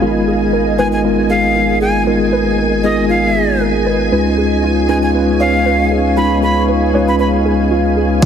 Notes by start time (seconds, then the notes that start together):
Already playing: C#4 G#4 D#5 F5
0.02 G#1 G#3 B3 D#4 F4 A#4 G#5
0.27 G#4
0.53 A#4
0.79 G#3 B3 D#4 F4 A#4 B4 G#5
0.93 G#5
1.04 G#3 B3 D#4 F4 A#4
1.30 G#4 F5
1.56 F4
1.81 G#4 G#5
2.07 G#3 B3 D#4 F4 A#4
2.33 B4
2.58 A#4
2.84 G#3 B3 D#4 F4 G#4 A#4 D#5
3.10 F4 F5
3.35 G#4
3.61 A#4
3.86 B4
4.12 C#2 G#3 C#4 D#4 F4 B4 D#5 F5 C#6
4.38 G#4
4.63 F4
4.89 G#3 C#4 D#4 F4 G#4 B4 G#5
5.03 G#5
5.14 G#3 C#4 D#4 F4 B4
5.40 C#5 F5
5.66 B4
5.71 F5
5.92 G#4
6.17 G#3 C#4 D#4 F4 B4 B5
6.43 G#4 B5
6.69 B4
6.94 G#3 C#4 D#4 F4 B4 C#5
7.08 B5
7.20 B4 B5
7.46 G#4
7.71 F4
7.97 G#4
8.22 G#1 F4 A#4 D#5 F5 G#5, kick, closed hi-hat, crash, cabasa